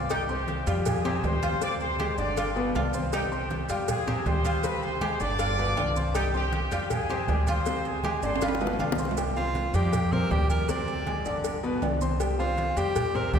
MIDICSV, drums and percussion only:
0, 0, Header, 1, 2, 480
1, 0, Start_track
1, 0, Key_signature, -3, "minor"
1, 0, Tempo, 378072
1, 131, Time_signature, 4, 2, 24, 8
1, 17001, End_track
2, 0, Start_track
2, 0, Title_t, "Drums"
2, 124, Note_on_c, 9, 70, 73
2, 127, Note_on_c, 9, 63, 33
2, 128, Note_on_c, 9, 68, 104
2, 133, Note_on_c, 9, 56, 111
2, 250, Note_off_c, 9, 70, 0
2, 254, Note_off_c, 9, 63, 0
2, 255, Note_off_c, 9, 68, 0
2, 260, Note_off_c, 9, 56, 0
2, 366, Note_on_c, 9, 63, 38
2, 367, Note_on_c, 9, 70, 31
2, 493, Note_off_c, 9, 63, 0
2, 494, Note_off_c, 9, 70, 0
2, 606, Note_on_c, 9, 63, 101
2, 610, Note_on_c, 9, 70, 30
2, 611, Note_on_c, 9, 66, 58
2, 611, Note_on_c, 9, 68, 68
2, 612, Note_on_c, 9, 56, 75
2, 733, Note_off_c, 9, 63, 0
2, 737, Note_off_c, 9, 70, 0
2, 738, Note_off_c, 9, 66, 0
2, 738, Note_off_c, 9, 68, 0
2, 739, Note_off_c, 9, 56, 0
2, 847, Note_on_c, 9, 70, 77
2, 848, Note_on_c, 9, 63, 33
2, 852, Note_on_c, 9, 68, 71
2, 854, Note_on_c, 9, 56, 69
2, 974, Note_off_c, 9, 70, 0
2, 975, Note_off_c, 9, 63, 0
2, 979, Note_off_c, 9, 68, 0
2, 981, Note_off_c, 9, 56, 0
2, 1087, Note_on_c, 9, 70, 92
2, 1092, Note_on_c, 9, 63, 36
2, 1092, Note_on_c, 9, 64, 87
2, 1094, Note_on_c, 9, 56, 105
2, 1095, Note_on_c, 9, 68, 110
2, 1214, Note_off_c, 9, 70, 0
2, 1219, Note_off_c, 9, 63, 0
2, 1219, Note_off_c, 9, 64, 0
2, 1221, Note_off_c, 9, 56, 0
2, 1222, Note_off_c, 9, 68, 0
2, 1326, Note_on_c, 9, 70, 26
2, 1336, Note_on_c, 9, 63, 36
2, 1453, Note_off_c, 9, 70, 0
2, 1463, Note_off_c, 9, 63, 0
2, 1568, Note_on_c, 9, 70, 31
2, 1573, Note_on_c, 9, 56, 68
2, 1573, Note_on_c, 9, 63, 87
2, 1576, Note_on_c, 9, 66, 87
2, 1576, Note_on_c, 9, 68, 73
2, 1695, Note_off_c, 9, 70, 0
2, 1700, Note_off_c, 9, 56, 0
2, 1700, Note_off_c, 9, 63, 0
2, 1703, Note_off_c, 9, 66, 0
2, 1703, Note_off_c, 9, 68, 0
2, 1810, Note_on_c, 9, 70, 72
2, 1811, Note_on_c, 9, 56, 66
2, 1815, Note_on_c, 9, 63, 80
2, 1815, Note_on_c, 9, 68, 94
2, 1937, Note_off_c, 9, 70, 0
2, 1938, Note_off_c, 9, 56, 0
2, 1942, Note_off_c, 9, 63, 0
2, 1942, Note_off_c, 9, 68, 0
2, 2050, Note_on_c, 9, 70, 76
2, 2051, Note_on_c, 9, 56, 100
2, 2056, Note_on_c, 9, 63, 33
2, 2177, Note_off_c, 9, 56, 0
2, 2177, Note_off_c, 9, 70, 0
2, 2183, Note_off_c, 9, 63, 0
2, 2288, Note_on_c, 9, 70, 30
2, 2296, Note_on_c, 9, 63, 36
2, 2297, Note_on_c, 9, 68, 82
2, 2415, Note_off_c, 9, 70, 0
2, 2423, Note_off_c, 9, 63, 0
2, 2424, Note_off_c, 9, 68, 0
2, 2525, Note_on_c, 9, 70, 29
2, 2533, Note_on_c, 9, 56, 75
2, 2534, Note_on_c, 9, 63, 110
2, 2540, Note_on_c, 9, 66, 56
2, 2540, Note_on_c, 9, 68, 110
2, 2652, Note_off_c, 9, 70, 0
2, 2660, Note_off_c, 9, 56, 0
2, 2661, Note_off_c, 9, 63, 0
2, 2667, Note_off_c, 9, 66, 0
2, 2667, Note_off_c, 9, 68, 0
2, 2765, Note_on_c, 9, 70, 66
2, 2777, Note_on_c, 9, 63, 39
2, 2892, Note_off_c, 9, 70, 0
2, 2904, Note_off_c, 9, 63, 0
2, 3007, Note_on_c, 9, 70, 90
2, 3014, Note_on_c, 9, 56, 103
2, 3019, Note_on_c, 9, 68, 85
2, 3024, Note_on_c, 9, 63, 37
2, 3134, Note_off_c, 9, 70, 0
2, 3141, Note_off_c, 9, 56, 0
2, 3146, Note_off_c, 9, 68, 0
2, 3151, Note_off_c, 9, 63, 0
2, 3247, Note_on_c, 9, 70, 30
2, 3261, Note_on_c, 9, 63, 37
2, 3374, Note_off_c, 9, 70, 0
2, 3388, Note_off_c, 9, 63, 0
2, 3490, Note_on_c, 9, 70, 31
2, 3495, Note_on_c, 9, 56, 72
2, 3499, Note_on_c, 9, 66, 82
2, 3499, Note_on_c, 9, 68, 94
2, 3502, Note_on_c, 9, 63, 78
2, 3617, Note_off_c, 9, 70, 0
2, 3622, Note_off_c, 9, 56, 0
2, 3626, Note_off_c, 9, 66, 0
2, 3626, Note_off_c, 9, 68, 0
2, 3629, Note_off_c, 9, 63, 0
2, 3726, Note_on_c, 9, 70, 84
2, 3742, Note_on_c, 9, 63, 79
2, 3853, Note_off_c, 9, 70, 0
2, 3869, Note_off_c, 9, 63, 0
2, 3970, Note_on_c, 9, 70, 76
2, 3973, Note_on_c, 9, 56, 90
2, 3976, Note_on_c, 9, 68, 97
2, 3981, Note_on_c, 9, 63, 35
2, 4097, Note_off_c, 9, 70, 0
2, 4100, Note_off_c, 9, 56, 0
2, 4103, Note_off_c, 9, 68, 0
2, 4108, Note_off_c, 9, 63, 0
2, 4212, Note_on_c, 9, 70, 28
2, 4218, Note_on_c, 9, 63, 36
2, 4339, Note_off_c, 9, 70, 0
2, 4345, Note_off_c, 9, 63, 0
2, 4445, Note_on_c, 9, 70, 28
2, 4454, Note_on_c, 9, 66, 65
2, 4454, Note_on_c, 9, 68, 69
2, 4455, Note_on_c, 9, 56, 64
2, 4455, Note_on_c, 9, 63, 109
2, 4572, Note_off_c, 9, 70, 0
2, 4581, Note_off_c, 9, 66, 0
2, 4581, Note_off_c, 9, 68, 0
2, 4582, Note_off_c, 9, 56, 0
2, 4582, Note_off_c, 9, 63, 0
2, 4684, Note_on_c, 9, 70, 73
2, 4692, Note_on_c, 9, 56, 75
2, 4692, Note_on_c, 9, 68, 66
2, 4695, Note_on_c, 9, 63, 37
2, 4811, Note_off_c, 9, 70, 0
2, 4819, Note_off_c, 9, 56, 0
2, 4819, Note_off_c, 9, 68, 0
2, 4822, Note_off_c, 9, 63, 0
2, 4927, Note_on_c, 9, 70, 94
2, 4928, Note_on_c, 9, 56, 101
2, 4930, Note_on_c, 9, 68, 105
2, 4938, Note_on_c, 9, 63, 34
2, 4938, Note_on_c, 9, 64, 85
2, 5054, Note_off_c, 9, 70, 0
2, 5055, Note_off_c, 9, 56, 0
2, 5057, Note_off_c, 9, 68, 0
2, 5065, Note_off_c, 9, 63, 0
2, 5065, Note_off_c, 9, 64, 0
2, 5169, Note_on_c, 9, 70, 26
2, 5178, Note_on_c, 9, 63, 38
2, 5178, Note_on_c, 9, 64, 73
2, 5296, Note_off_c, 9, 70, 0
2, 5305, Note_off_c, 9, 63, 0
2, 5305, Note_off_c, 9, 64, 0
2, 5407, Note_on_c, 9, 66, 78
2, 5407, Note_on_c, 9, 68, 82
2, 5408, Note_on_c, 9, 70, 31
2, 5411, Note_on_c, 9, 56, 71
2, 5411, Note_on_c, 9, 63, 81
2, 5534, Note_off_c, 9, 66, 0
2, 5534, Note_off_c, 9, 68, 0
2, 5535, Note_off_c, 9, 70, 0
2, 5538, Note_off_c, 9, 56, 0
2, 5538, Note_off_c, 9, 63, 0
2, 5647, Note_on_c, 9, 70, 82
2, 5648, Note_on_c, 9, 68, 95
2, 5649, Note_on_c, 9, 56, 74
2, 5649, Note_on_c, 9, 63, 82
2, 5774, Note_off_c, 9, 70, 0
2, 5775, Note_off_c, 9, 68, 0
2, 5776, Note_off_c, 9, 56, 0
2, 5776, Note_off_c, 9, 63, 0
2, 5885, Note_on_c, 9, 70, 73
2, 5887, Note_on_c, 9, 56, 99
2, 5890, Note_on_c, 9, 63, 33
2, 6012, Note_off_c, 9, 70, 0
2, 6014, Note_off_c, 9, 56, 0
2, 6017, Note_off_c, 9, 63, 0
2, 6123, Note_on_c, 9, 70, 30
2, 6126, Note_on_c, 9, 63, 39
2, 6127, Note_on_c, 9, 68, 84
2, 6250, Note_off_c, 9, 70, 0
2, 6253, Note_off_c, 9, 63, 0
2, 6254, Note_off_c, 9, 68, 0
2, 6363, Note_on_c, 9, 63, 108
2, 6364, Note_on_c, 9, 70, 28
2, 6365, Note_on_c, 9, 66, 60
2, 6365, Note_on_c, 9, 68, 107
2, 6369, Note_on_c, 9, 56, 72
2, 6490, Note_off_c, 9, 63, 0
2, 6491, Note_off_c, 9, 70, 0
2, 6492, Note_off_c, 9, 66, 0
2, 6492, Note_off_c, 9, 68, 0
2, 6496, Note_off_c, 9, 56, 0
2, 6602, Note_on_c, 9, 70, 64
2, 6608, Note_on_c, 9, 63, 37
2, 6729, Note_off_c, 9, 70, 0
2, 6735, Note_off_c, 9, 63, 0
2, 6843, Note_on_c, 9, 70, 88
2, 6844, Note_on_c, 9, 56, 114
2, 6846, Note_on_c, 9, 68, 81
2, 6850, Note_on_c, 9, 63, 34
2, 6970, Note_off_c, 9, 56, 0
2, 6970, Note_off_c, 9, 70, 0
2, 6973, Note_off_c, 9, 68, 0
2, 6977, Note_off_c, 9, 63, 0
2, 7087, Note_on_c, 9, 70, 28
2, 7089, Note_on_c, 9, 63, 37
2, 7214, Note_off_c, 9, 70, 0
2, 7216, Note_off_c, 9, 63, 0
2, 7323, Note_on_c, 9, 63, 86
2, 7324, Note_on_c, 9, 66, 74
2, 7324, Note_on_c, 9, 68, 97
2, 7325, Note_on_c, 9, 56, 64
2, 7328, Note_on_c, 9, 70, 31
2, 7450, Note_off_c, 9, 63, 0
2, 7451, Note_off_c, 9, 66, 0
2, 7451, Note_off_c, 9, 68, 0
2, 7452, Note_off_c, 9, 56, 0
2, 7455, Note_off_c, 9, 70, 0
2, 7564, Note_on_c, 9, 63, 80
2, 7566, Note_on_c, 9, 70, 76
2, 7691, Note_off_c, 9, 63, 0
2, 7693, Note_off_c, 9, 70, 0
2, 7804, Note_on_c, 9, 56, 95
2, 7805, Note_on_c, 9, 68, 117
2, 7806, Note_on_c, 9, 70, 79
2, 7814, Note_on_c, 9, 63, 38
2, 7931, Note_off_c, 9, 56, 0
2, 7932, Note_off_c, 9, 68, 0
2, 7933, Note_off_c, 9, 70, 0
2, 7941, Note_off_c, 9, 63, 0
2, 8046, Note_on_c, 9, 70, 28
2, 8173, Note_off_c, 9, 70, 0
2, 8285, Note_on_c, 9, 63, 109
2, 8286, Note_on_c, 9, 56, 73
2, 8286, Note_on_c, 9, 66, 66
2, 8286, Note_on_c, 9, 68, 73
2, 8286, Note_on_c, 9, 70, 30
2, 8412, Note_off_c, 9, 63, 0
2, 8413, Note_off_c, 9, 56, 0
2, 8413, Note_off_c, 9, 66, 0
2, 8413, Note_off_c, 9, 68, 0
2, 8413, Note_off_c, 9, 70, 0
2, 8524, Note_on_c, 9, 70, 74
2, 8525, Note_on_c, 9, 68, 67
2, 8526, Note_on_c, 9, 56, 77
2, 8526, Note_on_c, 9, 63, 38
2, 8651, Note_off_c, 9, 70, 0
2, 8652, Note_off_c, 9, 68, 0
2, 8653, Note_off_c, 9, 56, 0
2, 8653, Note_off_c, 9, 63, 0
2, 8763, Note_on_c, 9, 68, 107
2, 8764, Note_on_c, 9, 56, 100
2, 8766, Note_on_c, 9, 70, 80
2, 8772, Note_on_c, 9, 63, 34
2, 8772, Note_on_c, 9, 64, 91
2, 8890, Note_off_c, 9, 68, 0
2, 8891, Note_off_c, 9, 56, 0
2, 8893, Note_off_c, 9, 70, 0
2, 8899, Note_off_c, 9, 63, 0
2, 8899, Note_off_c, 9, 64, 0
2, 9005, Note_on_c, 9, 70, 29
2, 9010, Note_on_c, 9, 63, 39
2, 9132, Note_off_c, 9, 70, 0
2, 9137, Note_off_c, 9, 63, 0
2, 9244, Note_on_c, 9, 70, 28
2, 9245, Note_on_c, 9, 63, 84
2, 9246, Note_on_c, 9, 66, 85
2, 9246, Note_on_c, 9, 68, 85
2, 9250, Note_on_c, 9, 56, 74
2, 9371, Note_off_c, 9, 70, 0
2, 9372, Note_off_c, 9, 63, 0
2, 9373, Note_off_c, 9, 66, 0
2, 9373, Note_off_c, 9, 68, 0
2, 9377, Note_off_c, 9, 56, 0
2, 9482, Note_on_c, 9, 68, 111
2, 9484, Note_on_c, 9, 70, 80
2, 9485, Note_on_c, 9, 63, 92
2, 9488, Note_on_c, 9, 56, 66
2, 9609, Note_off_c, 9, 68, 0
2, 9611, Note_off_c, 9, 70, 0
2, 9612, Note_off_c, 9, 63, 0
2, 9615, Note_off_c, 9, 56, 0
2, 9721, Note_on_c, 9, 70, 89
2, 9729, Note_on_c, 9, 56, 98
2, 9848, Note_off_c, 9, 70, 0
2, 9856, Note_off_c, 9, 56, 0
2, 9963, Note_on_c, 9, 63, 33
2, 9965, Note_on_c, 9, 68, 93
2, 9965, Note_on_c, 9, 70, 30
2, 10090, Note_off_c, 9, 63, 0
2, 10092, Note_off_c, 9, 68, 0
2, 10092, Note_off_c, 9, 70, 0
2, 10202, Note_on_c, 9, 63, 107
2, 10202, Note_on_c, 9, 70, 31
2, 10208, Note_on_c, 9, 66, 60
2, 10208, Note_on_c, 9, 68, 102
2, 10216, Note_on_c, 9, 56, 70
2, 10329, Note_off_c, 9, 63, 0
2, 10329, Note_off_c, 9, 70, 0
2, 10335, Note_off_c, 9, 66, 0
2, 10335, Note_off_c, 9, 68, 0
2, 10343, Note_off_c, 9, 56, 0
2, 10442, Note_on_c, 9, 70, 76
2, 10444, Note_on_c, 9, 63, 36
2, 10451, Note_on_c, 9, 65, 73
2, 10569, Note_off_c, 9, 70, 0
2, 10571, Note_off_c, 9, 63, 0
2, 10578, Note_off_c, 9, 65, 0
2, 10608, Note_on_c, 9, 65, 88
2, 10679, Note_on_c, 9, 63, 34
2, 10681, Note_on_c, 9, 70, 83
2, 10689, Note_on_c, 9, 68, 77
2, 10690, Note_on_c, 9, 56, 104
2, 10690, Note_on_c, 9, 60, 90
2, 10735, Note_off_c, 9, 65, 0
2, 10772, Note_on_c, 9, 65, 86
2, 10806, Note_off_c, 9, 63, 0
2, 10808, Note_off_c, 9, 70, 0
2, 10816, Note_off_c, 9, 68, 0
2, 10817, Note_off_c, 9, 56, 0
2, 10817, Note_off_c, 9, 60, 0
2, 10850, Note_on_c, 9, 60, 80
2, 10899, Note_off_c, 9, 65, 0
2, 10921, Note_on_c, 9, 63, 38
2, 10923, Note_on_c, 9, 70, 26
2, 10929, Note_on_c, 9, 66, 95
2, 10977, Note_off_c, 9, 60, 0
2, 11006, Note_on_c, 9, 60, 83
2, 11048, Note_off_c, 9, 63, 0
2, 11050, Note_off_c, 9, 70, 0
2, 11056, Note_off_c, 9, 66, 0
2, 11087, Note_on_c, 9, 66, 80
2, 11133, Note_off_c, 9, 60, 0
2, 11155, Note_on_c, 9, 63, 80
2, 11161, Note_on_c, 9, 70, 29
2, 11165, Note_on_c, 9, 68, 102
2, 11169, Note_on_c, 9, 56, 68
2, 11214, Note_off_c, 9, 66, 0
2, 11282, Note_off_c, 9, 63, 0
2, 11288, Note_off_c, 9, 70, 0
2, 11292, Note_off_c, 9, 68, 0
2, 11296, Note_off_c, 9, 56, 0
2, 11328, Note_on_c, 9, 61, 109
2, 11396, Note_on_c, 9, 63, 80
2, 11403, Note_on_c, 9, 66, 70
2, 11404, Note_on_c, 9, 70, 77
2, 11455, Note_off_c, 9, 61, 0
2, 11491, Note_on_c, 9, 61, 83
2, 11523, Note_off_c, 9, 63, 0
2, 11530, Note_off_c, 9, 66, 0
2, 11531, Note_off_c, 9, 70, 0
2, 11567, Note_on_c, 9, 66, 89
2, 11618, Note_off_c, 9, 61, 0
2, 11642, Note_on_c, 9, 63, 34
2, 11644, Note_on_c, 9, 70, 81
2, 11650, Note_on_c, 9, 56, 94
2, 11650, Note_on_c, 9, 68, 107
2, 11694, Note_off_c, 9, 66, 0
2, 11769, Note_off_c, 9, 63, 0
2, 11771, Note_off_c, 9, 70, 0
2, 11777, Note_off_c, 9, 56, 0
2, 11777, Note_off_c, 9, 68, 0
2, 11882, Note_on_c, 9, 63, 34
2, 11885, Note_on_c, 9, 70, 28
2, 12009, Note_off_c, 9, 63, 0
2, 12012, Note_off_c, 9, 70, 0
2, 12124, Note_on_c, 9, 63, 96
2, 12127, Note_on_c, 9, 56, 68
2, 12127, Note_on_c, 9, 70, 28
2, 12128, Note_on_c, 9, 66, 61
2, 12128, Note_on_c, 9, 68, 65
2, 12251, Note_off_c, 9, 63, 0
2, 12254, Note_off_c, 9, 56, 0
2, 12254, Note_off_c, 9, 70, 0
2, 12255, Note_off_c, 9, 66, 0
2, 12255, Note_off_c, 9, 68, 0
2, 12365, Note_on_c, 9, 70, 69
2, 12366, Note_on_c, 9, 68, 68
2, 12370, Note_on_c, 9, 56, 73
2, 12371, Note_on_c, 9, 63, 39
2, 12492, Note_off_c, 9, 70, 0
2, 12493, Note_off_c, 9, 68, 0
2, 12497, Note_off_c, 9, 56, 0
2, 12498, Note_off_c, 9, 63, 0
2, 12603, Note_on_c, 9, 68, 100
2, 12605, Note_on_c, 9, 63, 34
2, 12605, Note_on_c, 9, 64, 86
2, 12607, Note_on_c, 9, 56, 96
2, 12609, Note_on_c, 9, 70, 90
2, 12730, Note_off_c, 9, 68, 0
2, 12732, Note_off_c, 9, 63, 0
2, 12732, Note_off_c, 9, 64, 0
2, 12734, Note_off_c, 9, 56, 0
2, 12735, Note_off_c, 9, 70, 0
2, 12846, Note_on_c, 9, 63, 37
2, 12846, Note_on_c, 9, 64, 70
2, 12848, Note_on_c, 9, 70, 26
2, 12973, Note_off_c, 9, 63, 0
2, 12973, Note_off_c, 9, 64, 0
2, 12975, Note_off_c, 9, 70, 0
2, 13084, Note_on_c, 9, 66, 82
2, 13084, Note_on_c, 9, 68, 78
2, 13087, Note_on_c, 9, 63, 81
2, 13089, Note_on_c, 9, 70, 27
2, 13091, Note_on_c, 9, 56, 70
2, 13211, Note_off_c, 9, 66, 0
2, 13211, Note_off_c, 9, 68, 0
2, 13214, Note_off_c, 9, 63, 0
2, 13216, Note_off_c, 9, 70, 0
2, 13218, Note_off_c, 9, 56, 0
2, 13324, Note_on_c, 9, 68, 100
2, 13326, Note_on_c, 9, 63, 89
2, 13328, Note_on_c, 9, 70, 80
2, 13330, Note_on_c, 9, 56, 64
2, 13451, Note_off_c, 9, 68, 0
2, 13453, Note_off_c, 9, 63, 0
2, 13455, Note_off_c, 9, 70, 0
2, 13457, Note_off_c, 9, 56, 0
2, 13567, Note_on_c, 9, 63, 32
2, 13567, Note_on_c, 9, 70, 79
2, 13570, Note_on_c, 9, 56, 111
2, 13694, Note_off_c, 9, 63, 0
2, 13694, Note_off_c, 9, 70, 0
2, 13697, Note_off_c, 9, 56, 0
2, 13807, Note_on_c, 9, 68, 80
2, 13808, Note_on_c, 9, 70, 26
2, 13811, Note_on_c, 9, 63, 35
2, 13934, Note_off_c, 9, 68, 0
2, 13935, Note_off_c, 9, 70, 0
2, 13938, Note_off_c, 9, 63, 0
2, 14045, Note_on_c, 9, 66, 58
2, 14045, Note_on_c, 9, 68, 96
2, 14048, Note_on_c, 9, 70, 29
2, 14053, Note_on_c, 9, 63, 102
2, 14054, Note_on_c, 9, 56, 68
2, 14172, Note_off_c, 9, 66, 0
2, 14172, Note_off_c, 9, 68, 0
2, 14175, Note_off_c, 9, 70, 0
2, 14180, Note_off_c, 9, 63, 0
2, 14181, Note_off_c, 9, 56, 0
2, 14287, Note_on_c, 9, 70, 70
2, 14291, Note_on_c, 9, 63, 38
2, 14414, Note_off_c, 9, 70, 0
2, 14418, Note_off_c, 9, 63, 0
2, 14525, Note_on_c, 9, 68, 78
2, 14527, Note_on_c, 9, 63, 37
2, 14528, Note_on_c, 9, 70, 90
2, 14529, Note_on_c, 9, 56, 109
2, 14652, Note_off_c, 9, 68, 0
2, 14654, Note_off_c, 9, 63, 0
2, 14655, Note_off_c, 9, 56, 0
2, 14655, Note_off_c, 9, 70, 0
2, 14771, Note_on_c, 9, 70, 30
2, 14774, Note_on_c, 9, 63, 36
2, 14897, Note_off_c, 9, 70, 0
2, 14901, Note_off_c, 9, 63, 0
2, 15007, Note_on_c, 9, 66, 85
2, 15007, Note_on_c, 9, 68, 108
2, 15011, Note_on_c, 9, 56, 67
2, 15011, Note_on_c, 9, 63, 80
2, 15012, Note_on_c, 9, 70, 33
2, 15134, Note_off_c, 9, 66, 0
2, 15134, Note_off_c, 9, 68, 0
2, 15138, Note_off_c, 9, 56, 0
2, 15138, Note_off_c, 9, 63, 0
2, 15139, Note_off_c, 9, 70, 0
2, 15249, Note_on_c, 9, 63, 92
2, 15250, Note_on_c, 9, 70, 77
2, 15375, Note_off_c, 9, 63, 0
2, 15377, Note_off_c, 9, 70, 0
2, 15489, Note_on_c, 9, 68, 100
2, 15490, Note_on_c, 9, 56, 107
2, 15490, Note_on_c, 9, 70, 92
2, 15492, Note_on_c, 9, 63, 31
2, 15616, Note_off_c, 9, 68, 0
2, 15617, Note_off_c, 9, 56, 0
2, 15617, Note_off_c, 9, 70, 0
2, 15619, Note_off_c, 9, 63, 0
2, 15730, Note_on_c, 9, 63, 33
2, 15733, Note_on_c, 9, 70, 33
2, 15857, Note_off_c, 9, 63, 0
2, 15860, Note_off_c, 9, 70, 0
2, 15964, Note_on_c, 9, 56, 74
2, 15970, Note_on_c, 9, 66, 64
2, 15970, Note_on_c, 9, 68, 74
2, 15971, Note_on_c, 9, 70, 28
2, 15972, Note_on_c, 9, 63, 111
2, 16091, Note_off_c, 9, 56, 0
2, 16097, Note_off_c, 9, 66, 0
2, 16097, Note_off_c, 9, 68, 0
2, 16098, Note_off_c, 9, 70, 0
2, 16099, Note_off_c, 9, 63, 0
2, 16209, Note_on_c, 9, 56, 70
2, 16211, Note_on_c, 9, 68, 63
2, 16211, Note_on_c, 9, 70, 73
2, 16217, Note_on_c, 9, 63, 35
2, 16336, Note_off_c, 9, 56, 0
2, 16338, Note_off_c, 9, 68, 0
2, 16338, Note_off_c, 9, 70, 0
2, 16344, Note_off_c, 9, 63, 0
2, 16450, Note_on_c, 9, 68, 114
2, 16451, Note_on_c, 9, 56, 115
2, 16451, Note_on_c, 9, 70, 89
2, 16461, Note_on_c, 9, 63, 34
2, 16461, Note_on_c, 9, 64, 91
2, 16577, Note_off_c, 9, 68, 0
2, 16578, Note_off_c, 9, 56, 0
2, 16578, Note_off_c, 9, 70, 0
2, 16588, Note_off_c, 9, 63, 0
2, 16588, Note_off_c, 9, 64, 0
2, 16692, Note_on_c, 9, 70, 26
2, 16699, Note_on_c, 9, 63, 37
2, 16699, Note_on_c, 9, 64, 75
2, 16819, Note_off_c, 9, 70, 0
2, 16826, Note_off_c, 9, 63, 0
2, 16826, Note_off_c, 9, 64, 0
2, 16929, Note_on_c, 9, 70, 29
2, 16931, Note_on_c, 9, 56, 73
2, 16932, Note_on_c, 9, 63, 88
2, 16936, Note_on_c, 9, 66, 79
2, 16936, Note_on_c, 9, 68, 78
2, 17001, Note_off_c, 9, 56, 0
2, 17001, Note_off_c, 9, 63, 0
2, 17001, Note_off_c, 9, 66, 0
2, 17001, Note_off_c, 9, 68, 0
2, 17001, Note_off_c, 9, 70, 0
2, 17001, End_track
0, 0, End_of_file